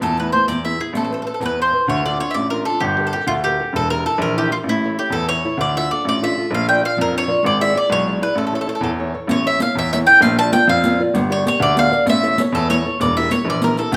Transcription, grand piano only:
0.01 0.32 E2 loud
0.47 0.78 E2 medium
0.93 1.24 A1 medium
1.40 1.71 E2 medium
1.88 2.18 D2 loud
2.34 2.65 A1 medium
2.81 3.11 G1 loud
3.27 3.57 D2 loud
3.73 4.03 E1 loud
4.18 4.49 A#1 loud
4.64 4.94 A1 medium
5.10 5.41 E2 medium
5.57 5.88 D2 loud
6.05 6.35 A1 medium
6.51 6.81 A#1 loud
6.98 7.28 F2 medium
7.45 7.74 G#1 medium
7.90 8.20 B1 medium
8.35 8.65 A1 loud
8.81 9.11 E2 loud
9.27 9.58 A1 loud
9.75 10.05 E2 medium
10.21 10.51 A#1 loud
10.67 10.98 F2 loud
11.14 11.44 G1 medium
11.60 11.90 D2 loud
12.06 12.36 A1 loud
12.52 12.82 E2 loud
13.00 13.30 E1 loud
13.45 13.75 A#1 medium
13.92 13.96 D2 loud

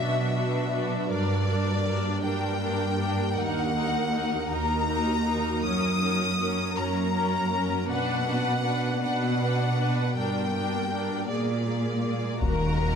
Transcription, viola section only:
0.00 0.34 D4 soft
0.00 0.34 F#4 soft
0.35 0.71 D4 soft
0.35 0.71 F#4 soft
0.72 1.09 D4 soft
0.72 1.09 F#4 soft
1.10 1.47 D4 soft
1.10 1.47 A#4 medium
1.48 1.84 D4 soft
1.48 1.84 A#4 soft
1.86 2.22 D4 soft
1.86 2.22 A#4 soft
2.23 2.60 D4 soft
2.23 2.60 A#4 soft
2.61 2.98 D4 soft
2.61 2.98 A#4 medium
2.99 3.36 D4 soft
2.99 3.36 A#4 soft
3.37 3.74 D#4 medium
3.37 3.74 A#4 medium
3.75 4.12 D#4 soft
3.75 4.12 A#4 medium
4.13 4.49 D#4 soft
4.13 4.49 A#4 soft
4.51 4.86 D#4 soft
4.51 4.86 A#4 soft
4.87 5.24 D#4 soft
4.87 5.24 A#4 medium
5.25 5.62 D#4 soft
5.25 5.62 A#4 medium
5.63 6.00 C#4 medium
5.63 6.00 A#4 medium
6.01 6.37 C#4 medium
6.01 6.37 A#4 medium
6.39 6.76 C#4 soft
6.39 6.76 A#4 soft
6.77 7.13 C#4 medium
6.77 7.13 A#4 medium
7.14 7.50 C#4 soft
7.14 7.51 A#4 soft
7.52 7.89 C#4 soft
7.52 7.89 A#4 soft
7.90 8.26 D4 medium
7.90 8.26 B4 medium
8.27 8.64 D4 soft
8.27 8.64 B4 medium
8.65 9.02 D4 soft
8.65 9.01 B4 soft
9.03 9.40 D4 soft
9.03 9.40 B4 soft
9.41 9.77 D4 soft
9.41 9.77 B4 soft
9.79 10.15 D4 soft
9.79 10.15 B4 soft
10.16 10.52 D4 soft
10.16 10.52 A#4 soft
10.54 10.90 D4 soft
10.54 10.90 A#4 soft
10.91 11.28 D4 soft
10.91 11.28 A#4 soft
11.29 11.66 A#3 soft
11.29 11.66 G#4 soft
11.67 12.03 A#3 soft
11.67 12.03 G#4 soft
12.04 12.41 A#3 soft
12.04 12.41 G#4 soft
12.42 12.95 A#3 soft
12.42 12.95 F#4 soft

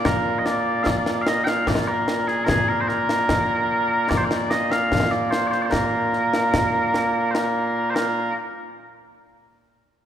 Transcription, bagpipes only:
0.00 8.33 A#2 medium
0.00 8.33 A#3 medium
0.05 0.39 A#4 loud
0.39 0.46 D#5 medium
0.46 0.83 D5 medium
0.83 1.22 D5 loud
0.83 0.87 F5 loud
1.22 1.28 F5 medium
1.28 1.44 D#5 loud
1.44 1.68 F5 medium
1.44 1.48 G5 medium
1.68 1.88 D5 medium
1.88 2.28 A#4 medium
2.28 2.44 G#4 medium
2.44 2.49 A#4 loud
2.49 2.68 G#4 loud
2.68 2.81 A#4 loud
2.81 2.88 C5 medium
2.88 4.09 A#4 loud
4.09 4.17 D5 loud
4.17 4.24 C5 medium
4.24 4.51 D5 loud
4.51 4.71 D#5 loud
4.71 5.11 F5 medium
5.11 5.30 D5 medium
5.30 5.47 C5 medium
5.47 5.51 D5 medium
5.51 5.62 C5 medium
5.62 5.71 C5 medium
5.62 5.65 D5 medium
5.71 7.31 A#4 medium
7.31 7.90 A#4 medium
7.31 7.34 C5 medium
7.90 7.95 C5 medium
7.95 8.33 A#4 medium

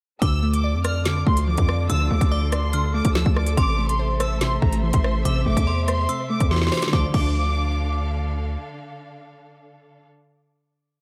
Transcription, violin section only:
0.22 0.51 E6 loud
0.53 0.83 D6 medium
0.85 1.04 F6 medium
1.06 1.25 D6 medium
1.27 1.46 C6 medium
1.47 1.87 D6 medium
1.90 2.08 E6 loud
2.10 2.50 D6 medium
2.52 2.92 C6 medium
2.95 3.13 D6 medium
3.15 3.34 E6 medium
3.37 3.56 D6 medium
3.58 3.87 D6 loud
3.89 4.18 C6 medium
4.21 4.39 E6 medium
4.41 4.60 C6 medium
4.62 4.81 A#5 medium
4.84 5.23 C6 medium
5.25 5.44 E6 loud
5.46 5.86 D6 medium
5.88 6.28 C6 medium
6.30 6.49 D6 medium
6.51 6.91 C6 medium
6.93 7.05 D6 medium
7.14 8.15 D6 medium

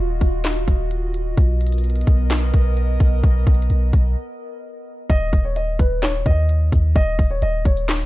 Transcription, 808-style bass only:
0.00 0.20 D#1 loud
0.21 0.66 D#1 loud
0.68 1.35 D#1 loud
1.37 2.04 B1 loud
2.07 2.52 B1 loud
2.54 2.98 B1 loud
3.00 3.23 B1 loud
3.24 3.46 B1 loud
3.47 3.69 B1 loud
3.70 3.92 B1 loud
3.93 4.16 B1 loud
5.10 5.32 D#1 loud
5.33 5.78 D#1 loud
5.79 6.24 D#1 loud
6.26 6.71 D#2 loud
6.72 6.95 D#2 loud
6.96 7.18 D#1 loud
7.19 7.41 D#1 loud
7.42 7.64 D#1 loud
7.65 8.06 D#1 loud

